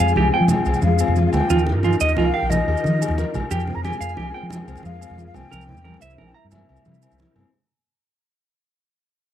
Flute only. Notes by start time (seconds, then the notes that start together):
Already playing: G#5
0.50 G5
0.74 G5
0.83 F5
1.26 F5
1.32 G5
2.01 D#5
2.25 F5
2.34 G5
2.50 D#5
3.51 G5
3.75 A#5
3.84 G#5
4.51 G5
4.76 G5
4.86 F5
5.26 F5
5.35 G5
6.01 E5
6.26 G5
6.35 E5
6.51 E5